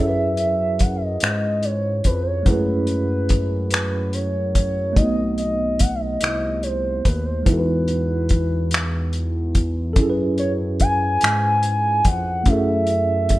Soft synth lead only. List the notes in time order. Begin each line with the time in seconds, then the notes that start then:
Already playing: E5
0.39 E5
0.81 F#5
0.97 E5
1.02 D#5
1.64 C#5
2.06 B4
2.22 C5 C#5
2.46 B4
3.72 B4
4.14 C#5
4.55 C#5
4.96 D#5
5.39 D#5
5.80 F#5
5.95 E5
6.01 D#5
6.63 C5
7.05 B4
7.25 C5
7.46 B4
10.39 C#5
10.81 G#5
12.06 F#5
12.48 E5